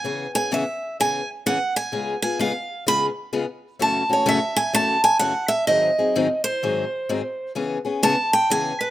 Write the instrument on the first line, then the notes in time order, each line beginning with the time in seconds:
steel-string acoustic guitar
Already playing: G#5
0.04 C#3 E3 B3 C#4 G#4
0.35 B3 C#4 G#4 G#5
0.52 C#3 E3 B3 C#4 G#4 E5
1.00 C#3 E3 B3 C#4 G#4 G#5
1.46 C#3 E3 B3 C#4 G#4 F#5
1.76 G#5
1.92 C#3 G#3 B3 F4 G#4
2.22 B3 F4 G#4 G#5
2.39 C#3 G#3 B3 F4 G#4 F5
2.86 C#3 G#3 B3 F4 G#4 B5
3.33 C#3 G#3 B3 F4 G#4
3.79 F#2 C#3 E3 A3 C#4 F#4 A5
4.09 E3 A3 C#4 F#4 C#5
4.26 F#2 C#3 E3 A3 C#4 F#4 E5
4.56 G#5
4.73 F#2 C#3 E3 A3 C#4 F#4 A5
5.04 G#5
5.19 F#2 C#3 E3 A3 C#4 F#4 F#5
5.48 E5
5.67 G#2 D#3 F#3 C4 D#4 G#4 D#5
5.98 F#3 C4 D#4 G#4
6.16 G#2 D#3 F#3 C4 D#4 G#4
6.44 C5
6.63 G#2 D#3 F#3 C4 D#4 G#4
7.09 G#2 D#3 F#3 C4 D#4 G#4
7.55 C#3 E3 B3 C#4 G#4
7.85 B3 C#4 G#4
8.03 C#3 E3 B3 C#4 G#4 A5
8.33 G5
8.50 C#3 E3 B3 C#4 G#4 G#5
8.81 B4